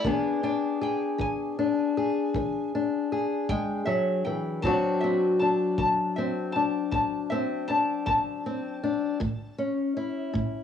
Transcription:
Already playing: D5
0.05 E3 B3 D4 G#4, kick
0.43 D4 G5
0.81 G#4 G5
1.18 E3 G#5, kick
1.59 D4
1.97 G#4
2.34 E3, kick
2.75 D4
3.12 G#4
3.49 G#3 G5, kick
3.85 F#3 E5
4.25 E3 G5
4.62 D3 F#3 C4 D4 A5, kick
4.67 F#4
5.01 C4 E5
5.39 D4 A5
5.78 D3 A5, kick
6.16 C4 E5
6.52 D4 A5
6.91 D3 A5, kick
7.30 C4 E5
7.68 D4 A5
8.06 D3 A5, kick
8.46 C4
8.84 D4
9.20 A2, kick
9.58 C#4
9.97 E4
10.34 A2, kick

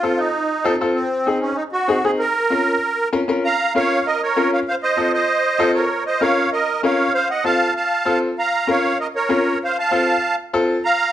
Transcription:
Already playing: F4
0.03 C4 F4 A4
0.17 D#4
0.64 C4 F4 A4
0.81 C4 F4 A4
0.94 C4
1.26 C4 D#4 G#4
1.41 C#4
1.56 D#4
1.72 F#4
1.88 C4 D#4 G#4
2.04 C4 D#4 G#4
2.19 A#4
2.50 C#4 F4 A#4
3.13 C#4 F4 A#4
3.28 C#4 F4 A#4
3.45 F5 A#5
3.75 C#4 F4 A#4 C#5 F5
4.06 A#4 D#5
4.23 A#4 C#5
4.36 C#4 F4 A#4
4.53 C#5 F5
4.68 C5 F5
4.83 C5 D#5
4.96 C4 F4 A4
5.14 C5 D#5
5.59 C4 F4 A4
5.75 A#4 C#5
6.07 C5 D#5
6.21 C#4 F4 A#4 C#5 F5
6.52 A#4 D#5
6.83 C#4 F4 A#4 C#5 F5
7.14 C5 F5
7.30 D#5 F#5
7.44 C4 F4 A4 F5 A5
7.76 F5 A5
8.05 C4 F4 A4
8.38 F5 A#5
8.67 C#4 F4 A#4 C#5 F5
9.00 A#4 D#5
9.16 A#4 C#5
9.29 C#4 F4 A#4
9.64 C5 F5
9.79 F5 A5
9.91 C4 F4 A4
10.53 C4 F4 A4
10.85 F5 A#5

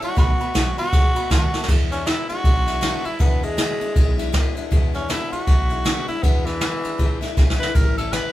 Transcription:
0.00 G3 C#4 E4 F#4 C#5 E5 A5, muted upright bass stroke, ride
0.15 B1 B2 D#3 A3 B3 F#4 D#5 F#5 B5, kick, snare, ride
0.19 F#4
0.38 A3 B3 F#4 D#5 F#5 B5, ride
0.54 B1 B2 D#3 A3 B3 F#4 D#5 F#5 G#5, snare, ride
0.77 A3 B3 F#4 D#5 F#5 B5, muted upright bass stroke, ride
0.92 C#2 D#3 A3 B3 F#4 D#5 F#5 C#6, kick, snare, ride
1.15 A3 B3 F#4 D#5 F#5 B5, muted upright bass stroke, ride
1.30 D#2 B2 D#3 A3 B3 F#4 D#5 F#5 A5, kick, snare, ride
1.52 A3 B3 F#4 D#5 F#5 A5, snare
1.63 snare
1.68 E2 B2 E3 G#3 D4 E4, kick, snare, crash
1.91 E3 G#3 C#4 D4 E4, snare, ride
2.05 E2 B2 E3 G#3 D4 E4, snare, ride
2.28 E3 G#3 D4 E4 F#4, muted upright bass stroke, ride
2.44 B1 E3 G#3 D4 E4, kick, ride
2.66 E3 G#3 D4 E4, snare, ride
2.81 E2 B2 E3 G#3 D4 E4, snare, ride
3.03 E3 G#3 D4 E4, muted upright bass stroke, ride
3.19 E2 B2 E3 G#3 B3 D4 E4, kick, ride
3.42 E3 G#3 D4 E4, ride
3.57 E2 B2 E3 G#3 D4 E4, snare, ride
3.80 E3 G#3 D4 E4, muted upright bass stroke, ride
3.95 B1 E3 G#3 D4 E4, kick, ride
4.17 E3 G#3 D4 E4, snare, ride
4.32 E2 B2 E3 G#3 D4 E4, kick, snare, ride
4.55 E3 G#3 D4 E4, muted upright bass stroke, ride
4.71 E2 B2 E3 G#3 D4 E4, kick, ride
4.93 E3 G#3 C#4 D4 E4, snare, ride
5.09 E2 B2 E3 G#3 D4 E4, snare, ride
5.31 E3 G#3 D4 E4 F#4, muted upright bass stroke, ride
5.47 B1 G#3 D4 E4, kick, snare, ride
5.69 E3 G#3 D4 E4, ride
5.84 E2 B2 E3 G#3 D4 E4, snare, ride
6.08 E3 G#3 D4 E4, muted upright bass stroke, ride
6.23 E2 B2 E3 G#3 B3 D4 E4, kick, snare, ride
6.45 E3 G#3 D4 E4, snare, ride
6.60 E2 B2 E3 G#3 D4 E4, snare, ride
6.83 E3 G#3 D4 E4, muted upright bass stroke, ride
6.98 C#2 E3 G#3 D4 E4, kick, ride
7.21 E3 G#3 D4 E4, muted upright bass stroke, snare, ride
7.37 B1 E2 B2 E3 G#3 D4 E4, kick, snare
7.50 snare
7.59 E3 G#3 D4 E4 B4, snare
7.75 A1 A2 E3 G3 C#4 E4 A#4, kick, ride
7.97 G3 C#4 E4 A4, snare, ride
8.12 A2 E3 G3 C#4 E4 B4, snare, ride

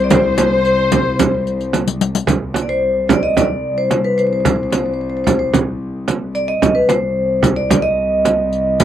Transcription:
Already playing: C2
0.04 D5
0.10 C5, riq, frame drum
0.38 riq, frame drum
0.65 riq
0.92 riq, frame drum
1.19 riq, frame drum
1.47 riq
1.61 riq
1.73 riq, frame drum
1.88 riq
2.01 riq
2.15 riq
2.27 C2, riq, frame drum
2.54 riq, frame drum
2.62 D5
2.69 C5
3.09 riq, frame drum
3.13 D5
3.23 D#5
3.37 D5, riq, frame drum
3.78 C5
3.91 riq, frame drum
4.05 B4
4.18 C5, riq
4.27 C5
4.33 C5
4.40 C5
4.45 C5, riq, frame drum
4.56 C5
4.63 C5
4.71 C5, riq, frame drum
4.78 C5
4.86 C5
4.94 C5
5.01 C5
5.10 C5
5.17 C5
5.24 C5, riq, frame drum
5.33 C5
5.39 C5
5.54 riq, frame drum
6.08 riq, frame drum
6.35 D5, riq
6.48 D#5
6.62 C2, riq, frame drum
6.75 B4
6.89 C5, riq, frame drum
7.43 riq, frame drum
7.56 D5
7.70 riq, frame drum
7.82 D#5
8.25 riq, frame drum
8.53 riq
8.80 riq, frame drum

